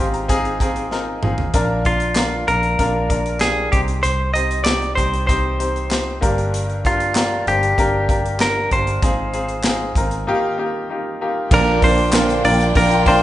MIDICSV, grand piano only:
0, 0, Header, 1, 2, 480
1, 0, Start_track
1, 0, Tempo, 623053
1, 1189, Time_signature, 4, 2, 24, 8
1, 10190, End_track
2, 0, Start_track
2, 0, Title_t, "Grand piano"
2, 0, Program_c, 0, 0
2, 0, Control_c, 0, 64, 127
2, 0, Note_on_c, 0, 44, 46
2, 0, Note_on_c, 0, 60, 75
2, 0, Note_on_c, 0, 63, 68
2, 0, Note_on_c, 0, 65, 67
2, 0, Note_on_c, 0, 67, 82
2, 0, Note_on_c, 0, 68, 86
2, 0, Note_on_c, 0, 84, 65
2, 100, Note_off_c, 0, 84, 0
2, 106, Note_on_c, 0, 82, 52
2, 181, Note_off_c, 0, 60, 0
2, 181, Note_off_c, 0, 63, 0
2, 184, Note_off_c, 0, 65, 0
2, 185, Note_off_c, 0, 67, 0
2, 219, Note_off_c, 0, 82, 0
2, 219, Note_on_c, 0, 60, 99
2, 221, Note_on_c, 0, 63, 89
2, 225, Note_on_c, 0, 80, 66
2, 226, Note_on_c, 0, 65, 85
2, 229, Note_off_c, 0, 68, 0
2, 229, Note_on_c, 0, 68, 108
2, 419, Note_off_c, 0, 60, 0
2, 420, Note_off_c, 0, 63, 0
2, 422, Note_off_c, 0, 65, 0
2, 424, Note_off_c, 0, 68, 0
2, 450, Note_off_c, 0, 80, 0
2, 467, Note_on_c, 0, 60, 76
2, 469, Note_on_c, 0, 63, 67
2, 472, Note_on_c, 0, 65, 69
2, 472, Note_on_c, 0, 79, 60
2, 478, Note_on_c, 0, 68, 86
2, 582, Note_off_c, 0, 79, 0
2, 589, Note_on_c, 0, 77, 54
2, 663, Note_off_c, 0, 60, 0
2, 664, Note_off_c, 0, 63, 0
2, 666, Note_off_c, 0, 65, 0
2, 668, Note_off_c, 0, 68, 0
2, 701, Note_off_c, 0, 77, 0
2, 702, Note_on_c, 0, 60, 68
2, 705, Note_on_c, 0, 63, 59
2, 709, Note_on_c, 0, 75, 58
2, 710, Note_on_c, 0, 70, 74
2, 711, Note_on_c, 0, 65, 61
2, 901, Note_off_c, 0, 60, 0
2, 902, Note_off_c, 0, 63, 0
2, 905, Note_off_c, 0, 65, 0
2, 905, Note_off_c, 0, 70, 0
2, 948, Note_on_c, 0, 60, 74
2, 949, Note_on_c, 0, 63, 67
2, 953, Note_on_c, 0, 65, 66
2, 955, Note_on_c, 0, 68, 76
2, 1144, Note_off_c, 0, 60, 0
2, 1144, Note_off_c, 0, 63, 0
2, 1146, Note_off_c, 0, 65, 0
2, 1147, Note_off_c, 0, 68, 0
2, 1159, Note_off_c, 0, 75, 0
2, 1185, Note_on_c, 0, 58, 91
2, 1188, Note_on_c, 0, 46, 60
2, 1188, Note_on_c, 0, 62, 86
2, 1191, Note_on_c, 0, 65, 88
2, 1196, Note_on_c, 0, 70, 98
2, 1200, Note_off_c, 0, 44, 0
2, 1200, Control_c, 0, 64, 0
2, 1334, Control_c, 0, 64, 127
2, 1382, Note_off_c, 0, 58, 0
2, 1384, Note_off_c, 0, 62, 0
2, 1385, Note_off_c, 0, 65, 0
2, 1388, Note_off_c, 0, 70, 0
2, 1432, Note_on_c, 0, 58, 61
2, 1435, Note_on_c, 0, 62, 56
2, 1439, Note_on_c, 0, 65, 57
2, 1441, Note_on_c, 0, 70, 66
2, 1626, Note_off_c, 0, 58, 0
2, 1627, Note_off_c, 0, 62, 0
2, 1629, Note_off_c, 0, 65, 0
2, 1630, Note_off_c, 0, 70, 0
2, 1672, Note_on_c, 0, 58, 64
2, 1674, Note_on_c, 0, 62, 59
2, 1678, Note_on_c, 0, 65, 56
2, 1680, Note_on_c, 0, 70, 76
2, 1865, Note_off_c, 0, 58, 0
2, 1867, Note_off_c, 0, 62, 0
2, 1869, Note_off_c, 0, 65, 0
2, 1870, Note_off_c, 0, 70, 0
2, 1878, Note_off_c, 0, 46, 0
2, 1912, Note_on_c, 0, 58, 64
2, 1917, Note_on_c, 0, 62, 56
2, 1918, Note_on_c, 0, 65, 57
2, 1923, Note_on_c, 0, 70, 64
2, 2106, Note_off_c, 0, 58, 0
2, 2108, Note_off_c, 0, 62, 0
2, 2109, Note_off_c, 0, 65, 0
2, 2111, Note_off_c, 0, 70, 0
2, 2149, Note_on_c, 0, 58, 85
2, 2151, Note_on_c, 0, 62, 76
2, 2153, Note_on_c, 0, 65, 79
2, 2157, Note_on_c, 0, 70, 85
2, 2344, Note_off_c, 0, 58, 0
2, 2345, Note_off_c, 0, 62, 0
2, 2346, Note_off_c, 0, 65, 0
2, 2348, Note_off_c, 0, 70, 0
2, 2382, Note_on_c, 0, 58, 66
2, 2385, Note_on_c, 0, 62, 57
2, 2389, Note_on_c, 0, 65, 62
2, 2392, Note_on_c, 0, 70, 64
2, 2581, Note_off_c, 0, 58, 0
2, 2582, Note_off_c, 0, 62, 0
2, 2584, Note_off_c, 0, 65, 0
2, 2586, Note_off_c, 0, 70, 0
2, 2626, Note_on_c, 0, 58, 61
2, 2631, Note_on_c, 0, 62, 49
2, 2636, Note_on_c, 0, 65, 53
2, 2637, Note_on_c, 0, 67, 63
2, 2823, Note_off_c, 0, 58, 0
2, 2825, Note_off_c, 0, 62, 0
2, 2828, Note_off_c, 0, 65, 0
2, 2828, Note_off_c, 0, 67, 0
2, 2861, Note_on_c, 0, 60, 63
2, 2865, Note_on_c, 0, 63, 61
2, 2866, Note_on_c, 0, 48, 51
2, 2869, Note_on_c, 0, 67, 60
2, 2871, Note_on_c, 0, 72, 70
2, 2879, Control_c, 0, 64, 0
2, 3003, Control_c, 0, 64, 127
2, 3255, Note_off_c, 0, 60, 0
2, 3257, Note_off_c, 0, 63, 0
2, 3259, Note_off_c, 0, 67, 0
2, 3260, Note_off_c, 0, 72, 0
2, 3346, Note_on_c, 0, 60, 61
2, 3349, Note_on_c, 0, 63, 55
2, 3351, Note_on_c, 0, 67, 56
2, 3354, Note_on_c, 0, 72, 70
2, 3543, Note_off_c, 0, 60, 0
2, 3544, Note_off_c, 0, 63, 0
2, 3545, Note_off_c, 0, 67, 0
2, 3547, Note_off_c, 0, 72, 0
2, 3557, Note_off_c, 0, 48, 0
2, 3590, Note_on_c, 0, 60, 66
2, 3592, Note_on_c, 0, 63, 59
2, 3595, Note_on_c, 0, 67, 66
2, 3595, Note_on_c, 0, 74, 75
2, 3785, Note_off_c, 0, 60, 0
2, 3786, Note_off_c, 0, 63, 0
2, 3787, Note_off_c, 0, 67, 0
2, 3787, Note_off_c, 0, 74, 0
2, 3825, Note_on_c, 0, 60, 61
2, 3830, Note_on_c, 0, 63, 58
2, 3835, Note_on_c, 0, 67, 59
2, 3838, Note_on_c, 0, 72, 73
2, 4022, Note_off_c, 0, 60, 0
2, 4024, Note_off_c, 0, 63, 0
2, 4027, Note_off_c, 0, 67, 0
2, 4028, Note_off_c, 0, 72, 0
2, 4064, Note_on_c, 0, 60, 83
2, 4070, Note_on_c, 0, 63, 74
2, 4074, Note_on_c, 0, 67, 77
2, 4075, Note_on_c, 0, 72, 97
2, 4262, Note_off_c, 0, 60, 0
2, 4264, Note_off_c, 0, 63, 0
2, 4267, Note_off_c, 0, 67, 0
2, 4267, Note_off_c, 0, 72, 0
2, 4303, Note_on_c, 0, 60, 69
2, 4309, Note_on_c, 0, 63, 59
2, 4312, Note_on_c, 0, 72, 73
2, 4314, Note_on_c, 0, 67, 59
2, 4501, Note_off_c, 0, 60, 0
2, 4504, Note_off_c, 0, 63, 0
2, 4506, Note_off_c, 0, 72, 0
2, 4507, Note_off_c, 0, 67, 0
2, 4540, Note_on_c, 0, 60, 62
2, 4544, Note_on_c, 0, 63, 57
2, 4548, Note_on_c, 0, 67, 56
2, 4553, Note_on_c, 0, 72, 63
2, 4740, Note_off_c, 0, 60, 0
2, 4742, Note_off_c, 0, 63, 0
2, 4744, Note_off_c, 0, 67, 0
2, 4746, Note_off_c, 0, 72, 0
2, 4782, Note_on_c, 0, 58, 82
2, 4786, Note_on_c, 0, 62, 71
2, 4788, Note_on_c, 0, 43, 68
2, 4790, Note_on_c, 0, 67, 70
2, 4795, Note_on_c, 0, 70, 81
2, 4801, Control_c, 0, 64, 0
2, 4932, Control_c, 0, 64, 127
2, 5176, Note_off_c, 0, 58, 0
2, 5178, Note_off_c, 0, 62, 0
2, 5180, Note_off_c, 0, 67, 0
2, 5182, Note_off_c, 0, 70, 0
2, 5273, Note_on_c, 0, 58, 66
2, 5276, Note_on_c, 0, 62, 60
2, 5278, Note_on_c, 0, 67, 62
2, 5283, Note_on_c, 0, 70, 68
2, 5466, Note_off_c, 0, 58, 0
2, 5467, Note_off_c, 0, 62, 0
2, 5469, Note_off_c, 0, 67, 0
2, 5471, Note_off_c, 0, 70, 0
2, 5478, Note_off_c, 0, 43, 0
2, 5512, Note_on_c, 0, 58, 68
2, 5516, Note_on_c, 0, 62, 67
2, 5519, Note_on_c, 0, 67, 63
2, 5522, Note_on_c, 0, 70, 74
2, 5706, Note_off_c, 0, 58, 0
2, 5708, Note_off_c, 0, 62, 0
2, 5709, Note_off_c, 0, 67, 0
2, 5711, Note_off_c, 0, 70, 0
2, 5757, Note_on_c, 0, 62, 58
2, 5758, Note_on_c, 0, 58, 70
2, 5762, Note_on_c, 0, 67, 56
2, 5765, Note_on_c, 0, 72, 68
2, 5948, Note_off_c, 0, 58, 0
2, 5948, Note_off_c, 0, 62, 0
2, 5950, Note_off_c, 0, 67, 0
2, 5952, Note_off_c, 0, 72, 0
2, 5994, Note_on_c, 0, 58, 82
2, 5996, Note_on_c, 0, 62, 81
2, 6000, Note_on_c, 0, 67, 86
2, 6004, Note_on_c, 0, 70, 95
2, 6187, Note_off_c, 0, 58, 0
2, 6188, Note_off_c, 0, 62, 0
2, 6189, Note_off_c, 0, 67, 0
2, 6192, Note_off_c, 0, 70, 0
2, 6233, Note_on_c, 0, 58, 63
2, 6236, Note_on_c, 0, 62, 58
2, 6238, Note_on_c, 0, 67, 66
2, 6241, Note_on_c, 0, 70, 75
2, 6426, Note_off_c, 0, 58, 0
2, 6428, Note_off_c, 0, 62, 0
2, 6428, Note_off_c, 0, 67, 0
2, 6430, Note_off_c, 0, 70, 0
2, 6474, Note_on_c, 0, 58, 59
2, 6477, Note_on_c, 0, 62, 52
2, 6477, Note_on_c, 0, 67, 52
2, 6482, Note_on_c, 0, 70, 61
2, 6666, Note_off_c, 0, 58, 0
2, 6668, Note_off_c, 0, 62, 0
2, 6668, Note_off_c, 0, 67, 0
2, 6671, Note_off_c, 0, 70, 0
2, 6710, Note_on_c, 0, 58, 62
2, 6714, Note_on_c, 0, 62, 56
2, 6718, Note_on_c, 0, 67, 55
2, 6720, Note_on_c, 0, 70, 68
2, 6904, Note_off_c, 0, 58, 0
2, 6907, Note_off_c, 0, 62, 0
2, 6909, Note_off_c, 0, 67, 0
2, 6909, Note_off_c, 0, 70, 0
2, 6949, Note_on_c, 0, 60, 82
2, 6953, Note_on_c, 0, 63, 74
2, 6956, Note_on_c, 0, 65, 77
2, 6957, Note_on_c, 0, 44, 55
2, 6960, Control_c, 0, 64, 0
2, 6960, Note_on_c, 0, 68, 86
2, 7092, Control_c, 0, 64, 127
2, 7144, Note_off_c, 0, 60, 0
2, 7146, Note_off_c, 0, 63, 0
2, 7148, Note_off_c, 0, 65, 0
2, 7149, Note_off_c, 0, 68, 0
2, 7192, Note_on_c, 0, 60, 66
2, 7194, Note_on_c, 0, 63, 55
2, 7195, Note_on_c, 0, 65, 57
2, 7198, Note_on_c, 0, 68, 74
2, 7385, Note_off_c, 0, 60, 0
2, 7386, Note_off_c, 0, 63, 0
2, 7387, Note_off_c, 0, 65, 0
2, 7388, Note_off_c, 0, 68, 0
2, 7429, Note_on_c, 0, 60, 75
2, 7432, Note_on_c, 0, 63, 72
2, 7436, Note_on_c, 0, 65, 70
2, 7440, Note_on_c, 0, 68, 84
2, 7624, Note_off_c, 0, 60, 0
2, 7625, Note_off_c, 0, 63, 0
2, 7628, Note_off_c, 0, 65, 0
2, 7629, Note_off_c, 0, 68, 0
2, 7642, Note_off_c, 0, 44, 0
2, 7676, Note_on_c, 0, 60, 72
2, 7678, Note_on_c, 0, 63, 69
2, 7680, Note_on_c, 0, 65, 67
2, 7684, Note_on_c, 0, 70, 80
2, 7867, Note_off_c, 0, 60, 0
2, 7868, Note_off_c, 0, 63, 0
2, 7869, Note_off_c, 0, 65, 0
2, 7871, Note_off_c, 0, 70, 0
2, 7912, Note_on_c, 0, 58, 93
2, 7915, Note_on_c, 0, 63, 88
2, 7917, Note_on_c, 0, 51, 67
2, 7919, Control_c, 0, 64, 0
2, 7919, Note_on_c, 0, 65, 91
2, 7924, Note_on_c, 0, 67, 110
2, 8037, Control_c, 0, 64, 127
2, 8105, Note_off_c, 0, 58, 0
2, 8107, Note_off_c, 0, 63, 0
2, 8109, Note_off_c, 0, 65, 0
2, 8111, Note_off_c, 0, 67, 0
2, 8149, Note_on_c, 0, 58, 76
2, 8153, Note_on_c, 0, 63, 65
2, 8159, Note_on_c, 0, 65, 71
2, 8162, Note_on_c, 0, 67, 84
2, 8344, Note_off_c, 0, 58, 0
2, 8346, Note_off_c, 0, 63, 0
2, 8349, Note_off_c, 0, 65, 0
2, 8350, Note_off_c, 0, 67, 0
2, 8395, Note_on_c, 0, 58, 65
2, 8398, Note_on_c, 0, 63, 66
2, 8404, Note_on_c, 0, 65, 64
2, 8407, Note_on_c, 0, 67, 72
2, 8587, Note_off_c, 0, 58, 0
2, 8588, Note_off_c, 0, 63, 0
2, 8591, Note_off_c, 0, 65, 0
2, 8593, Note_off_c, 0, 67, 0
2, 8602, Note_off_c, 0, 51, 0
2, 8638, Note_on_c, 0, 58, 74
2, 8641, Note_on_c, 0, 63, 65
2, 8643, Note_on_c, 0, 65, 70
2, 8644, Note_on_c, 0, 67, 81
2, 8828, Note_off_c, 0, 58, 0
2, 8830, Note_off_c, 0, 63, 0
2, 8831, Note_off_c, 0, 65, 0
2, 8831, Note_off_c, 0, 67, 0
2, 8874, Note_on_c, 0, 58, 87
2, 8879, Control_c, 0, 64, 0
2, 8879, Note_on_c, 0, 62, 83
2, 8880, Note_on_c, 0, 46, 56
2, 8882, Note_on_c, 0, 65, 83
2, 8883, Note_on_c, 0, 70, 81
2, 8884, Note_on_c, 0, 74, 99
2, 9025, Control_c, 0, 64, 127
2, 9066, Note_off_c, 0, 58, 0
2, 9069, Note_off_c, 0, 62, 0
2, 9070, Note_off_c, 0, 65, 0
2, 9071, Note_off_c, 0, 70, 0
2, 9071, Note_off_c, 0, 74, 0
2, 9108, Note_on_c, 0, 58, 72
2, 9110, Note_on_c, 0, 62, 67
2, 9112, Note_on_c, 0, 65, 66
2, 9114, Note_on_c, 0, 70, 67
2, 9119, Note_on_c, 0, 72, 75
2, 9303, Note_off_c, 0, 58, 0
2, 9304, Note_off_c, 0, 62, 0
2, 9305, Note_off_c, 0, 65, 0
2, 9306, Note_off_c, 0, 70, 0
2, 9308, Note_off_c, 0, 72, 0
2, 9351, Note_on_c, 0, 58, 78
2, 9354, Note_on_c, 0, 62, 67
2, 9355, Note_on_c, 0, 65, 67
2, 9359, Note_on_c, 0, 70, 72
2, 9362, Note_on_c, 0, 74, 83
2, 9544, Note_off_c, 0, 58, 0
2, 9546, Note_off_c, 0, 62, 0
2, 9546, Note_off_c, 0, 65, 0
2, 9548, Note_off_c, 0, 70, 0
2, 9550, Note_off_c, 0, 74, 0
2, 9563, Note_off_c, 0, 46, 0
2, 9587, Note_on_c, 0, 58, 75
2, 9588, Note_on_c, 0, 62, 68
2, 9592, Note_on_c, 0, 65, 69
2, 9593, Note_on_c, 0, 70, 65
2, 9596, Note_on_c, 0, 74, 81
2, 9782, Note_off_c, 0, 58, 0
2, 9783, Note_off_c, 0, 62, 0
2, 9785, Note_off_c, 0, 65, 0
2, 9785, Note_off_c, 0, 70, 0
2, 9787, Note_off_c, 0, 74, 0
2, 9825, Note_on_c, 0, 58, 80
2, 9827, Note_on_c, 0, 62, 71
2, 9832, Note_on_c, 0, 65, 75
2, 9833, Note_on_c, 0, 70, 71
2, 9835, Note_on_c, 0, 74, 87
2, 10021, Note_off_c, 0, 58, 0
2, 10022, Note_off_c, 0, 62, 0
2, 10025, Note_off_c, 0, 65, 0
2, 10025, Note_off_c, 0, 70, 0
2, 10026, Note_off_c, 0, 74, 0
2, 10068, Note_on_c, 0, 58, 89
2, 10073, Note_on_c, 0, 62, 84
2, 10075, Note_on_c, 0, 65, 97
2, 10077, Note_on_c, 0, 70, 92
2, 10080, Note_on_c, 0, 74, 100
2, 10190, Note_off_c, 0, 58, 0
2, 10190, Note_off_c, 0, 62, 0
2, 10190, Note_off_c, 0, 65, 0
2, 10190, Note_off_c, 0, 70, 0
2, 10190, Note_off_c, 0, 74, 0
2, 10190, End_track
0, 0, End_of_file